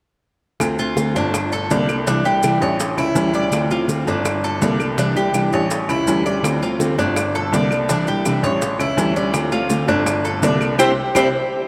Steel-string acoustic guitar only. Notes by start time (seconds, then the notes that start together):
0.60 D3 A3 C4 F4
0.79 A3 C4 F4
0.96 D3 A3 C4 F4
1.15 A3 C4 F4
1.34 muted steel-string acoustic guitar stroke
1.70 D3 G3 A#3 D4 A4
1.88 A#3 D4 A4
2.07 C3 E3 G3 D4 E4
2.24 G3 D4 E4
2.43 C3 E3 G3 D4 E4
2.60 G3 D4 E4
2.79 muted steel-string acoustic guitar stroke
3.15 E3 G3 C#4 E4
3.33 G3 C#4 E4
3.52 D3 A3 C4 F4
3.71 A3 C4 F4
3.88 D3 A3 C4 F4
4.05 A3 C4 F4
4.24 muted steel-string acoustic guitar stroke
4.61 D3 G3 A#3 D4 A4
4.80 A#3 D4 A4
4.98 C3 E3 G3 D4 E4
5.15 G3 D4 E4
5.33 C3 E3 G3 D4 E4
5.51 G3 D4 E4
5.69 muted steel-string acoustic guitar stroke
6.06 E3 G3 C#4 E4
6.25 G3 C#4 E4
6.43 D3 A3 C4 F4
6.62 A3 C4 F4
6.80 D3 A3 C4 F4
6.98 A3 C4 F4
7.17 muted steel-string acoustic guitar stroke
7.52 D3 G3 A#3 D4 A4
7.71 A#3 D4 A4
7.90 C3 E3 G3 D4 E4
8.08 G3 D4 E4
8.26 C3 E3 G3 D4 E4
8.45 G3 D4 E4
8.62 muted steel-string acoustic guitar stroke
8.98 E3 G3 C#4 E4
9.16 G3 C#4 E4
9.34 D3 A3 C4 F4
9.52 A3 C4 F4
9.70 D3 A3 C4 F4
9.87 A3 C4 F4
10.06 muted steel-string acoustic guitar stroke
10.42 D3 G3 A#3 D4 A4
10.60 A#3 D4 A4
10.78 C4 D4 E4
11.15 C4 D4 E4